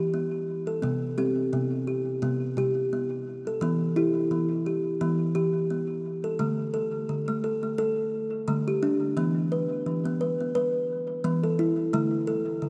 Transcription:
Already playing: E3 G4
0.14 B3
0.67 A4
0.82 C3 B3
1.18 C4 G4
1.53 C3 B3
1.87 G4
2.22 C3 B3
2.57 C3 G4
2.93 B3
3.47 A4
3.61 E3 B3
3.96 E4 G4
4.31 E3 B3
4.66 G4
5.01 E3 B3
5.35 E3 G4
5.70 B3
6.24 A4
6.39 D3 A3
6.74 A4
7.09 D3
7.28 A3
7.44 A4
7.63 A3
7.78 A4
8.48 D3 A3
8.68 G4
8.83 D4
9.17 E3 B3
9.52 B4
9.86 E3
10.05 B3
10.21 B4
10.40 B3
10.55 B4
11.24 E3 B3
11.44 A4
11.59 E4
11.93 D3 A3
12.27 A4
12.62 D3

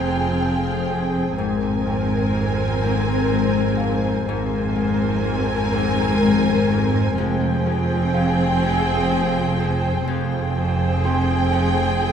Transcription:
Already playing: F1 F2 F3 C4 G#4 G5 A#5 C6 F6
0.41 F3
0.90 F2
1.35 G#1 F2 G#2 C4 A#4 C5 G#5
1.87 G#2
2.35 G#2
2.84 G#2
3.32 G#3
3.77 G#2 F5
4.26 G#1 F2 G#2 C4 A#4 C5 G#5
4.76 G#2
5.24 G#2
5.73 G#2
6.22 G#3
6.70 G#2
7.16 F1 F2 C4 G#4 C5 G5
7.66 F2
8.14 F2 F5
8.63 F2
9.12 F3
9.60 F2
10.05 F1 F2 C4 G#4 C5 G5
10.55 F2
11.04 F2 C4 C6
11.53 F2
12.02 F3

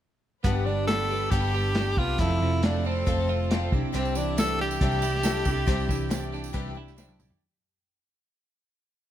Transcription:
0.44 G1 G2 D3 G3 B3 D4 G4 B4 D5 B5, kick, closed hi-hat
0.66 D3 G3 B3 D4 G4
0.87 G3 B3 D4 G4 A4, snare, closed hi-hat
1.10 G3 B3 D4 G4
1.30 G1 G2 D3 G3 B3 D4 G4, kick, closed hi-hat
1.54 G3 B3 D4 G4
1.75 G3 B3 D4 G4, snare, closed hi-hat
1.97 C2 G3 B3 D4 F4 G4, kick
2.18 F1 F2 F3 C4 E4 F4 A4 C5 A5, kick, closed hi-hat
2.40 F1 C3 C4 F4 A4
2.62 F3 A3 C4 D4 F4 A4, snare, closed hi-hat
2.85 C4 F4 A4
3.06 F1 F3 A3 C4 F4 A4, kick, closed hi-hat
3.29 C4 F4 A4
3.51 F3 C4 F4 A4, snare, closed hi-hat
3.72 C2 C3 D4 E4 G4 D5 E5, kick
3.92 C2 C3 G3 C4 D4 E4 G4 C5, closed hi-hat, tambourine
4.05 tambourine
4.15 E3 D4 E4 G4, tambourine
4.36 G3 D4 E4 G4 A4 B4, snare, closed hi-hat, tambourine
4.59 D4 E4 G4
4.71 tambourine
4.81 C2 C3 G3 D4 E4 G4 C5, kick, closed hi-hat
4.92 tambourine
5.02 D4 E4 G4, tambourine
5.15 snare
5.23 G3 D4 E4 A4, snare, closed hi-hat, tambourine
5.27 E4 G4
5.45 C2 G3 D4 E4 G4, kick, tambourine
5.66 C2 C3 G3 D4 E4 G4 C5, kick, closed hi-hat, tambourine
5.80 tambourine
5.88 C2 E3 D4 E4 G4, kick, tambourine
6.01 tambourine
6.09 G3 D4 E4 G4 C5, snare, closed hi-hat, tambourine
6.32 D4 E4 G4, snare, tambourine
6.44 tambourine
6.53 C2 C3 G3 D4 E4 G4 B4, kick, closed hi-hat
6.66 snare
6.75 D4 E4 G4
6.87 snare, tambourine
6.97 G3 D4 E4 G4 C5, snare, tambourine
7.09 high tom
7.19 C2 G3 D4 E4 G4, mid tom, tambourine
7.30 floor tom

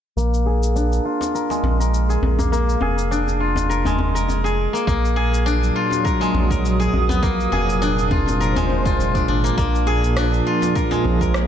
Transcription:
0.17 A#1 A#3, shaker
0.34 shaker
0.46 G#4
0.63 shaker
0.76 D4, shaker
0.93 shaker
1.05 F4
1.21 djembe slap, shaker
1.35 A#4, shaker
1.50 G#3, djembe slap, shaker
1.64 A#1, djembe slap, djembe tone
1.80 A#4, shaker
1.94 shaker
2.09 G#4, shaker
2.22 A#1, djembe tone
2.38 A#3, djembe bass, shaker
2.52 A#3, shaker
2.69 shaker
2.81 F1 G#4, djembe tone
2.98 shaker
3.11 D4, shaker
3.27 djembe tone, shaker
3.40 F4
3.56 djembe slap, djembe tone, shaker
3.69 A#4, shaker
3.85 G#3, djembe slap, djembe bass, shaker
3.99 djembe slap, djembe bass
4.15 A#4, shaker
4.28 djembe tone, shaker
4.44 G#4, shaker
4.73 A#3, shaker
4.87 A#1 A#2 A#3, kick, shaker
5.05 shaker
5.16 G#4
5.34 F#3, shaker
5.46 D4, shaker
5.63 shaker
5.76 F4
5.91 D#6, djembe slap, shaker
6.05 A#4, kick, shaker
6.21 G#3, djembe slap, shaker
6.34 A#1, djembe slap, djembe tone
6.51 A#4, kick, shaker
6.65 shaker
6.80 G#4, shaker
6.93 A#1, djembe tone
7.09 B3, djembe bass, shaker
7.22 A#3, kick, shaker
7.40 shaker
7.52 F1 G#4, djembe tone
7.70 shaker
7.82 D4, shaker
7.98 djembe tone, shaker
8.11 F4, kick, djembe bass
8.27 C5, djembe slap, djembe tone, shaker
8.40 A#4, shaker
8.56 G#3, djembe slap, djembe bass, shaker
8.69 djembe slap, djembe bass
8.85 F4, kick, shaker
8.99 F1, djembe tone, shaker
9.15 D4, kick, shaker
9.28 G#1 D4
9.44 A#3, djembe slap, shaker
9.58 A#1 A#3, kick, shaker
9.75 shaker
9.87 G#4, djembe slap
10.02 F3, shaker
10.16 D4, cross-stick, shaker
10.34 shaker
10.47 F4
10.62 djembe slap, shaker
10.68 G#4
10.75 A#4, kick, shaker
10.91 G#3, djembe slap, shaker
11.04 A#1, djembe tone
11.21 A#4, kick, shaker
11.34 cross-stick, shaker

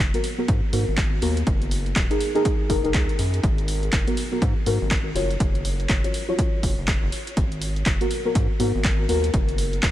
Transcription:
0.00 F#1
0.14 B3 F#4 A#4, closed hi-hat
0.24 open hi-hat
0.38 B3 F#4 A#4
0.48 G#2, kick, closed hi-hat
0.73 G#2 B3 F#4 A#4, open hi-hat
0.88 G#1
0.98 kick, clap, closed hi-hat
1.22 D#2 B3 F#4 A#4, open hi-hat
1.37 closed hi-hat
1.47 F#1, kick, closed hi-hat
1.62 closed hi-hat
1.71 open hi-hat
1.86 closed hi-hat
1.96 D#1, kick, clap, closed hi-hat
2.10 D#4 G#4 A#4, closed hi-hat
2.21 open hi-hat
2.35 D#4 G#4 A#4, closed hi-hat
2.45 kick, closed hi-hat
2.69 F#1 D#4 G#4 A#4, kick, open hi-hat
2.84 F#1 D#4 G#4 A#4, closed hi-hat
2.94 C#2, kick, clap, closed hi-hat
3.09 closed hi-hat
3.19 F#2, open hi-hat
3.34 closed hi-hat
3.43 G#1, kick, closed hi-hat
3.58 closed hi-hat
3.68 open hi-hat
3.83 closed hi-hat
3.93 F#1, kick, clap, closed hi-hat
4.07 B3 F#4 A#4, closed hi-hat
4.17 open hi-hat
4.32 B3 F#4 A#4
4.42 G#2, kick, closed hi-hat
4.66 G#2 B3 F#4 A#4, open hi-hat
4.81 G#1
4.91 kick, clap, closed hi-hat
5.15 F#1 F4 F#4 C#5, open hi-hat
5.31 closed hi-hat
5.40 F#1, kick, closed hi-hat
5.55 closed hi-hat
5.65 open hi-hat
5.80 closed hi-hat
5.89 F#1, kick, clap, closed hi-hat
6.04 F4 F#4 C#5, closed hi-hat
6.14 open hi-hat
6.28 F4 F#4 C#5
6.38 F4 F#4 C#5, kick, closed hi-hat
6.63 F#1, kick, open hi-hat
6.78 F#1
6.88 kick, clap, closed hi-hat
7.03 F#1
7.12 open hi-hat
7.27 closed hi-hat
7.37 G#1, kick, closed hi-hat
7.52 closed hi-hat
7.62 open hi-hat
7.76 closed hi-hat
7.86 F#1, kick, clap, closed hi-hat
8.01 B3 F#4 A#4, closed hi-hat
8.11 open hi-hat
8.25 B3 F#4 A#4
8.35 G#2, kick, closed hi-hat
8.59 G#2 B3 F#4 A#4, open hi-hat
8.75 G#1
8.84 kick, clap, closed hi-hat
9.09 D#2 B3 F#4 A#4, open hi-hat
9.24 closed hi-hat
9.34 F#1, kick, closed hi-hat
9.49 closed hi-hat
9.58 open hi-hat
9.73 closed hi-hat
9.83 D#1, kick, clap, closed hi-hat

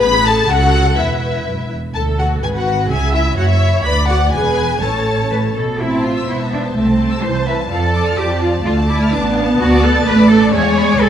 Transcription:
Already playing: G#4
0.02 A1 A2 B4 B5
0.26 A4 A5
0.49 C#2 C#3 F#4 A4 F#5
0.98 E1 E2 E4 B4 E5
1.46 E1 F#2
1.71 E2
1.94 D2 A4 A5
2.19 F#4 F#5
2.43 G#1 G#2 G#4 B4 G#5
2.55 F#4 F#5
2.90 C#2 C#3 G#4 E5 G#5
3.14 E4 E5
3.37 F#1 F#2 F#4 C#5 F#5
3.49 E4 E5
3.84 D2 B4 D5 B5
4.08 F#4 F#5
4.32 E1 E2 G#4 B4 G#5
4.81 A1 A2 A4 C#5 A5
5.32 A2 B4
5.56 B2 A4
5.80 A1 C4 E4 C5 E5
5.92 A5
6.04 F4 C6
6.16 E6
6.29 E1 B3 E4 C6
6.40 A5
6.52 D4 E5
6.64 A5
6.76 C2 A3 C4 E5 A5
6.88 A5
6.99 C6
7.11 E6
7.23 C2 E3 C5 C6
7.35 A5
7.47 B4 E5
7.59 A5
7.70 F2 F3 A4 D5 F5
7.82 A5
7.95 D6
8.06 F6
8.18 F2 G4 D6
8.31 A5
8.42 F4 F5
8.55 A5
8.65 D2 A3 F4 F5 A5
8.78 A5
8.89 E4 D6
9.01 F6
9.13 A1 B3 D4 D6
9.25 A5
9.37 F5
9.49 A5
9.60 D2 F#4 D5 A5
9.72 D6
9.83 A4 F#6
9.95 A6
10.06 A1 A3 B4 F#6
10.19 D6
10.30 A4 A5
10.42 D6
10.53 E2 G#3 C#5 E5 G#5
10.65 G#5
10.77 B5
10.88 D6
11.00 B1 A4 B5

